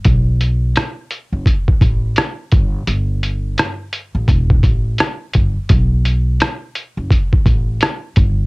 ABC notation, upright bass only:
X:1
M:4/4
L:1/16
Q:"Swing 16ths" 1/4=85
K:Edor
V:1 name="Upright bass" clef=bass
B,,,4 z3 F,,, z2 A,,,2 z2 G,,,2 | G,,,4 z3 A,,, E,,,2 A,,,2 z2 G,,, z | B,,,4 z3 F,,, z2 A,,,2 z2 G,,,2 |]